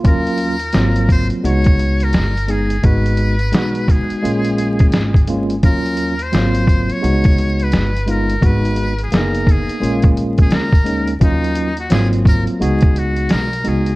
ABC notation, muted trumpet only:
X:1
M:4/4
L:1/16
Q:"Swing 16ths" 1/4=86
K:Abdor
V:1 name="Muted trumpet"
B6 =c2 d3 B3 A2 | c6 A8 z2 | B3 =c4 d4 _c3 B2 | c3 A B2 A3 z2 A B3 z |
E3 G A2 B2 A2 G2 B2 A2 |]